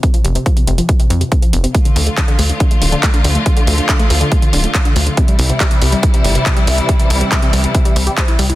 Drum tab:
HH |xxxxxxxxxxxxxxxx|xxoxxxoxxxoxxxox|xxoxxxoxxxoxxxox|xxoxxxoxxxoxxxox|
CP |----------------|----x-------x---|----x-------x---|----x-------x---|
BD |o---o---o---o---|o---o---o---o---|o---o---o---o---|o---o---o---o---|

HH |xxoxxxoxxxoxxxox|
CP |----x-------x---|
BD |o---o---o---o---|